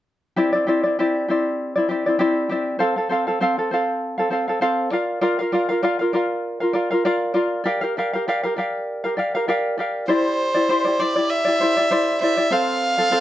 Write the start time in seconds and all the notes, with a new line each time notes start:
0.36 C4 E4 G4 D5
0.53 C4 E4 D5
0.67 C4 E4 G4 D5
0.83 C4 E4 D5
0.99 C4 E4 G4 D5
1.28 C4 E4 G4 D5
1.76 C4 E4 D5
1.89 C4 E4 G4 D5
2.06 C4 E4 D5
2.19 C4 E4 G4 D5
2.49 C4 E4 G4 D5
2.79 C4 A4 C5 F5
2.96 C4 A4 F5
3.09 C4 A4 C5 F5
3.27 C4 A4 F5
3.40 C4 A4 C5 F5
3.58 C4 A4 F5
3.71 C4 A4 C5 F5
4.18 C4 A4 F5
4.30 C4 A4 C5 F5
4.48 C4 A4 F5
4.61 C4 A4 C5 F5
4.91 F4 A#4 D5 F5
5.21 F4 A#4 D5 F5
5.39 F4 A#4 F5
5.52 F4 A#4 D5 F5
5.69 F4 A#4 F5
5.83 F4 A#4 D5 F5
5.99 F4 A#4 F5
6.13 F4 A#4 D5 F5
6.60 F4 A#4 F5
6.73 F4 A#4 D5 F5
6.91 F4 A#4 F5
7.05 F4 A#4 D5 F5
7.34 F4 A#4 D5 F5
7.64 G4 A#4 D5 F5
7.81 G4 A#4 F5
7.97 G4 A#4 D5 F5
8.13 G4 A#4 F5
8.28 G4 A#4 D5 F5
8.43 G4 A#4 F5
8.56 G4 A#4 D5 F5
9.04 G4 A#4 F5
9.17 G4 A#4 D5 F5
9.35 G4 A#4 F5
9.48 G4 A#4 D5 F5
9.78 G4 A#4 D5 F5
10.08 E4 G4 C5 D5
10.54 E4 G4 D5
10.69 E4 G4 C5 D5
10.85 E4 G4 D5
10.99 E4 G4 C5 D5
11.16 E4 G4 D5
11.30 E5
11.45 E4 G4 D5
11.60 E4 G4 C5 D5
11.77 E4 G4 D5
11.91 E4 G4 C5 D5
12.21 E4 G4 C5 D5 E5
12.37 E4 G4 D5
12.51 C4 A4 C5 F5
12.97 C4 A4 F5
13.11 C4 A4 C5 F5